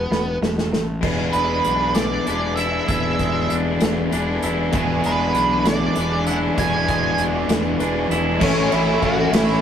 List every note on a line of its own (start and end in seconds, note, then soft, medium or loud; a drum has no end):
0.00 0.37 B3 medium
0.11 0.38 E1 medium
0.11 0.38 E2 medium
0.11 0.39 B2 medium
0.11 snare medium
0.41 0.69 E1 medium
0.41 0.70 E2 medium
0.41 0.70 B2 medium
0.41 snare medium
0.58 snare medium
0.72 0.99 A1 medium
0.72 1.00 E2 medium
0.72 1.00 B2 medium
0.72 snare medium
1.01 1.29 E1 medium
1.01 2.89 E2 medium
1.01 2.25 E3 medium
1.01 2.26 B3 medium
1.01 2.27 D4 medium
1.01 2.28 G#4 medium
1.01 2.29 B4 loud
1.01 kick medium
1.01 crash medium
1.33 1.60 E1 medium
1.33 3.20 G#3 medium
1.33 1.97 B4 medium
1.33 closed hi-hat medium
1.64 2.17 B1 medium
1.64 2.27 D4 medium
1.64 closed hi-hat medium
1.95 3.54 E3 medium
1.95 2.53 D5 medium
1.95 snare loud
1.95 closed hi-hat medium
2.26 2.79 E1 medium
2.26 2.85 E3 medium
2.26 2.87 B3 medium
2.26 2.87 D4 medium
2.26 3.51 D4 medium
2.26 2.88 G#4 medium
2.26 2.89 B4 medium
2.26 closed hi-hat medium
2.56 4.16 E4 medium
2.56 2.85 E5 medium
2.56 closed hi-hat medium
2.86 3.14 E1 medium
2.86 4.75 E2 medium
2.86 4.10 E3 medium
2.86 4.11 B3 medium
2.86 4.12 D4 loud
2.86 4.13 G#4 loud
2.86 4.13 B4 loud
2.86 3.54 E5 medium
2.86 kick loud
2.86 closed hi-hat medium
3.19 3.45 E1 medium
3.19 5.05 G#3 medium
3.19 kick medium
3.19 closed hi-hat medium
3.50 3.77 E1 medium
3.50 4.13 D4 medium
3.50 closed hi-hat medium
3.81 4.07 E1 medium
3.81 5.39 E3 medium
3.81 snare loud
3.81 closed hi-hat medium
4.11 4.38 E1 medium
4.11 4.71 E3 medium
4.11 4.72 B3 medium
4.11 4.73 D4 medium
4.11 5.36 D4 medium
4.11 4.73 G#4 medium
4.11 4.74 B4 medium
4.11 closed hi-hat medium
4.43 4.69 E1 medium
4.43 6.00 E4 medium
4.43 closed hi-hat medium
4.72 4.99 E1 medium
4.72 6.28 E2 medium
4.72 5.95 E3 medium
4.72 5.96 B3 medium
4.72 5.95 D4 loud
4.72 5.95 G#4 medium
4.72 5.99 B4 loud
4.72 kick loud
4.72 closed hi-hat medium
5.04 5.31 E1 medium
5.04 6.59 G#3 medium
5.04 5.69 B4 medium
5.04 closed hi-hat medium
5.35 5.86 B1 medium
5.35 5.96 D4 medium
5.35 closed hi-hat medium
5.66 7.20 E3 medium
5.66 6.24 D5 medium
5.66 snare loud
5.66 closed hi-hat medium
5.96 6.48 E1 medium
5.96 6.57 E3 medium
5.96 6.58 B3 medium
5.96 6.56 D4 medium
5.96 7.18 D4 medium
5.96 6.57 G#4 medium
5.96 6.60 B4 medium
5.96 closed hi-hat medium
6.27 7.80 E4 medium
6.27 6.36 F#5 medium
6.27 closed hi-hat medium
6.57 6.84 E1 medium
6.57 8.11 E2 medium
6.57 7.77 E3 loud
6.57 7.78 B3 loud
6.57 7.79 D4 medium
6.57 7.79 G#4 loud
6.57 7.80 B4 medium
6.57 7.23 G#5 medium
6.57 kick medium
6.57 closed hi-hat medium
6.88 7.14 E1 medium
6.88 8.42 G#3 medium
6.88 kick medium
6.88 closed hi-hat medium
7.18 7.44 E1 medium
7.18 7.79 D4 medium
7.18 closed hi-hat medium
7.48 7.74 E1 medium
7.48 8.42 E3 medium
7.48 snare loud
7.48 closed hi-hat medium
7.78 8.05 E1 medium
7.78 8.38 E3 medium
7.78 8.39 B3 medium
7.78 8.42 D4 medium
7.78 8.39 D4 medium
7.78 8.40 G#4 medium
7.78 8.40 B4 medium
7.78 closed hi-hat medium
8.10 8.36 E1 medium
8.10 8.42 E4 medium
8.10 closed hi-hat medium
8.39 8.64 A1 loud
8.39 8.69 A2 loud
8.39 8.70 E3 loud
8.39 8.70 A3 loud
8.39 8.71 C#4 loud
8.39 8.71 E4 loud
8.39 kick loud
8.39 crash loud
8.43 8.74 C#4 medium
8.70 8.95 A1 medium
8.70 8.99 A2 medium
8.70 9.00 E3 medium
8.70 9.01 A3 medium
8.70 9.01 C#4 medium
8.70 9.03 E4 medium
8.70 9.02 E4 loud
8.70 ride medium
9.01 9.25 A1 medium
9.01 9.30 A2 medium
9.01 9.31 E3 medium
9.01 9.31 A3 medium
9.01 9.31 C#4 medium
9.01 9.31 E4 loud
9.01 9.32 F#4 medium
9.01 kick medium
9.01 ride medium
9.31 9.54 A1 medium
9.31 9.61 A2 loud
9.31 9.61 E3 loud
9.31 9.61 A3 loud
9.31 9.61 C#4 loud
9.31 9.61 E4 loud
9.31 9.61 E4 medium
9.31 snare loud
9.31 ride loud